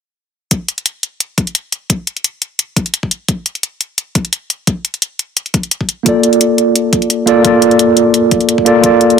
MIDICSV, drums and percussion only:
0, 0, Header, 1, 2, 480
1, 0, Start_track
1, 0, Tempo, 346821
1, 707, Time_signature, 4, 2, 24, 8
1, 12729, End_track
2, 0, Start_track
2, 0, Title_t, "Drums"
2, 707, Note_on_c, 9, 42, 92
2, 708, Note_on_c, 9, 36, 110
2, 845, Note_off_c, 9, 42, 0
2, 846, Note_off_c, 9, 36, 0
2, 947, Note_on_c, 9, 42, 65
2, 1078, Note_off_c, 9, 42, 0
2, 1078, Note_on_c, 9, 42, 37
2, 1186, Note_off_c, 9, 42, 0
2, 1186, Note_on_c, 9, 42, 91
2, 1324, Note_off_c, 9, 42, 0
2, 1427, Note_on_c, 9, 42, 63
2, 1566, Note_off_c, 9, 42, 0
2, 1666, Note_on_c, 9, 42, 92
2, 1805, Note_off_c, 9, 42, 0
2, 1906, Note_on_c, 9, 36, 99
2, 1906, Note_on_c, 9, 42, 65
2, 2036, Note_off_c, 9, 42, 0
2, 2036, Note_on_c, 9, 42, 35
2, 2045, Note_off_c, 9, 36, 0
2, 2145, Note_off_c, 9, 42, 0
2, 2145, Note_on_c, 9, 42, 92
2, 2283, Note_off_c, 9, 42, 0
2, 2386, Note_on_c, 9, 42, 65
2, 2524, Note_off_c, 9, 42, 0
2, 2626, Note_on_c, 9, 36, 114
2, 2628, Note_on_c, 9, 42, 91
2, 2765, Note_off_c, 9, 36, 0
2, 2766, Note_off_c, 9, 42, 0
2, 2867, Note_on_c, 9, 42, 63
2, 2997, Note_off_c, 9, 42, 0
2, 2997, Note_on_c, 9, 42, 36
2, 3105, Note_off_c, 9, 42, 0
2, 3105, Note_on_c, 9, 42, 91
2, 3244, Note_off_c, 9, 42, 0
2, 3345, Note_on_c, 9, 42, 63
2, 3484, Note_off_c, 9, 42, 0
2, 3585, Note_on_c, 9, 42, 91
2, 3723, Note_off_c, 9, 42, 0
2, 3826, Note_on_c, 9, 36, 105
2, 3827, Note_on_c, 9, 42, 64
2, 3956, Note_off_c, 9, 42, 0
2, 3956, Note_on_c, 9, 42, 35
2, 3964, Note_off_c, 9, 36, 0
2, 4065, Note_off_c, 9, 42, 0
2, 4065, Note_on_c, 9, 42, 89
2, 4195, Note_on_c, 9, 36, 59
2, 4203, Note_off_c, 9, 42, 0
2, 4307, Note_on_c, 9, 42, 63
2, 4333, Note_off_c, 9, 36, 0
2, 4445, Note_off_c, 9, 42, 0
2, 4545, Note_on_c, 9, 42, 87
2, 4546, Note_on_c, 9, 36, 116
2, 4684, Note_off_c, 9, 36, 0
2, 4684, Note_off_c, 9, 42, 0
2, 4786, Note_on_c, 9, 42, 63
2, 4916, Note_off_c, 9, 42, 0
2, 4916, Note_on_c, 9, 42, 36
2, 5027, Note_off_c, 9, 42, 0
2, 5027, Note_on_c, 9, 42, 89
2, 5166, Note_off_c, 9, 42, 0
2, 5267, Note_on_c, 9, 42, 62
2, 5406, Note_off_c, 9, 42, 0
2, 5507, Note_on_c, 9, 42, 86
2, 5646, Note_off_c, 9, 42, 0
2, 5746, Note_on_c, 9, 42, 61
2, 5747, Note_on_c, 9, 36, 106
2, 5878, Note_off_c, 9, 42, 0
2, 5878, Note_on_c, 9, 42, 34
2, 5885, Note_off_c, 9, 36, 0
2, 5988, Note_off_c, 9, 42, 0
2, 5988, Note_on_c, 9, 42, 86
2, 6127, Note_off_c, 9, 42, 0
2, 6229, Note_on_c, 9, 42, 60
2, 6367, Note_off_c, 9, 42, 0
2, 6467, Note_on_c, 9, 36, 115
2, 6467, Note_on_c, 9, 42, 83
2, 6605, Note_off_c, 9, 36, 0
2, 6606, Note_off_c, 9, 42, 0
2, 6708, Note_on_c, 9, 42, 61
2, 6835, Note_off_c, 9, 42, 0
2, 6835, Note_on_c, 9, 42, 34
2, 6948, Note_off_c, 9, 42, 0
2, 6948, Note_on_c, 9, 42, 85
2, 7086, Note_off_c, 9, 42, 0
2, 7186, Note_on_c, 9, 42, 61
2, 7325, Note_off_c, 9, 42, 0
2, 7427, Note_on_c, 9, 42, 85
2, 7555, Note_off_c, 9, 42, 0
2, 7555, Note_on_c, 9, 42, 33
2, 7667, Note_off_c, 9, 42, 0
2, 7667, Note_on_c, 9, 36, 104
2, 7667, Note_on_c, 9, 42, 60
2, 7797, Note_off_c, 9, 42, 0
2, 7797, Note_on_c, 9, 42, 33
2, 7806, Note_off_c, 9, 36, 0
2, 7907, Note_off_c, 9, 42, 0
2, 7907, Note_on_c, 9, 42, 84
2, 8036, Note_on_c, 9, 36, 59
2, 8046, Note_off_c, 9, 42, 0
2, 8147, Note_on_c, 9, 42, 60
2, 8174, Note_off_c, 9, 36, 0
2, 8286, Note_off_c, 9, 42, 0
2, 8386, Note_on_c, 9, 42, 86
2, 8387, Note_on_c, 9, 36, 108
2, 8524, Note_off_c, 9, 42, 0
2, 8526, Note_off_c, 9, 36, 0
2, 8628, Note_on_c, 9, 42, 63
2, 8757, Note_off_c, 9, 42, 0
2, 8757, Note_on_c, 9, 42, 35
2, 8868, Note_off_c, 9, 42, 0
2, 8868, Note_on_c, 9, 42, 85
2, 9007, Note_off_c, 9, 42, 0
2, 9109, Note_on_c, 9, 42, 59
2, 9247, Note_off_c, 9, 42, 0
2, 9349, Note_on_c, 9, 42, 85
2, 9487, Note_off_c, 9, 42, 0
2, 9587, Note_on_c, 9, 36, 102
2, 9587, Note_on_c, 9, 42, 61
2, 9716, Note_off_c, 9, 42, 0
2, 9716, Note_on_c, 9, 42, 34
2, 9725, Note_off_c, 9, 36, 0
2, 9827, Note_off_c, 9, 42, 0
2, 9827, Note_on_c, 9, 42, 85
2, 9965, Note_off_c, 9, 42, 0
2, 10064, Note_on_c, 9, 42, 61
2, 10203, Note_off_c, 9, 42, 0
2, 10304, Note_on_c, 9, 42, 87
2, 10307, Note_on_c, 9, 36, 108
2, 10443, Note_off_c, 9, 42, 0
2, 10445, Note_off_c, 9, 36, 0
2, 10546, Note_on_c, 9, 42, 63
2, 10674, Note_off_c, 9, 42, 0
2, 10674, Note_on_c, 9, 42, 37
2, 10786, Note_off_c, 9, 42, 0
2, 10786, Note_on_c, 9, 42, 89
2, 10924, Note_off_c, 9, 42, 0
2, 11026, Note_on_c, 9, 42, 64
2, 11164, Note_off_c, 9, 42, 0
2, 11265, Note_on_c, 9, 42, 86
2, 11404, Note_off_c, 9, 42, 0
2, 11506, Note_on_c, 9, 42, 64
2, 11507, Note_on_c, 9, 36, 98
2, 11633, Note_off_c, 9, 42, 0
2, 11633, Note_on_c, 9, 42, 34
2, 11646, Note_off_c, 9, 36, 0
2, 11745, Note_off_c, 9, 42, 0
2, 11745, Note_on_c, 9, 42, 89
2, 11876, Note_on_c, 9, 36, 56
2, 11884, Note_off_c, 9, 42, 0
2, 11987, Note_on_c, 9, 42, 61
2, 12015, Note_off_c, 9, 36, 0
2, 12125, Note_off_c, 9, 42, 0
2, 12228, Note_on_c, 9, 36, 105
2, 12229, Note_on_c, 9, 42, 91
2, 12366, Note_off_c, 9, 36, 0
2, 12368, Note_off_c, 9, 42, 0
2, 12467, Note_on_c, 9, 42, 64
2, 12597, Note_off_c, 9, 42, 0
2, 12597, Note_on_c, 9, 42, 38
2, 12729, Note_off_c, 9, 42, 0
2, 12729, End_track
0, 0, End_of_file